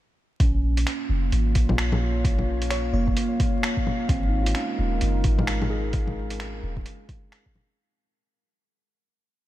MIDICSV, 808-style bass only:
0, 0, Header, 1, 2, 480
1, 0, Start_track
1, 0, Key_signature, -5, "minor"
1, 0, Tempo, 461538
1, 412, Time_signature, 4, 2, 24, 8
1, 9856, End_track
2, 0, Start_track
2, 0, Title_t, "808-style bass"
2, 0, Program_c, 0, 38
2, 418, Note_on_c, 0, 34, 98
2, 883, Note_off_c, 0, 34, 0
2, 1137, Note_on_c, 0, 29, 98
2, 1360, Note_off_c, 0, 29, 0
2, 1374, Note_on_c, 0, 32, 95
2, 1617, Note_on_c, 0, 34, 95
2, 1633, Note_off_c, 0, 32, 0
2, 3043, Note_off_c, 0, 34, 0
2, 3048, Note_on_c, 0, 29, 97
2, 3275, Note_off_c, 0, 29, 0
2, 4256, Note_on_c, 0, 32, 99
2, 4722, Note_off_c, 0, 32, 0
2, 4979, Note_on_c, 0, 27, 96
2, 5201, Note_off_c, 0, 27, 0
2, 5220, Note_on_c, 0, 30, 95
2, 5455, Note_on_c, 0, 32, 98
2, 5470, Note_off_c, 0, 30, 0
2, 6882, Note_off_c, 0, 32, 0
2, 6897, Note_on_c, 0, 27, 99
2, 7120, Note_off_c, 0, 27, 0
2, 9856, End_track
0, 0, End_of_file